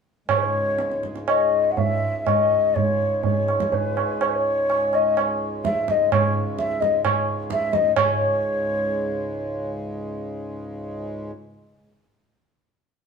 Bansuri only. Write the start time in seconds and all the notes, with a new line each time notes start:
0.29 C#5
0.36 B4
0.42 C#5
1.27 D#5
1.71 F#5
1.77 E5
2.18 E5
2.26 D#5
2.74 C#5
3.24 C#5
3.73 B4
4.21 C#5
4.28 B4
4.35 C#5
4.94 D#5
5.64 E5
5.90 D#5
6.12 C#5
6.58 E5
6.80 D#5
7.04 C#5
7.52 E5
7.72 D#5
7.95 C#5